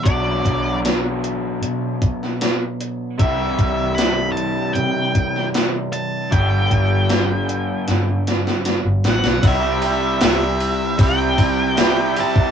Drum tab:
RD |----------------|----------------|----------------|x-x-x-x-x-x-x-x-|
HH |x-x-x-x-x-x-x-x-|x-x-x-x-x-x-x-x-|x-x-x-x-x-x-x-x-|----------------|
SD |----o------oo---|----o------oo---|----o---o-ooo-oo|----o-------o---|
BD |o-o-------o-----|o-o-------o-----|o-o-------------|o-------o-o----o|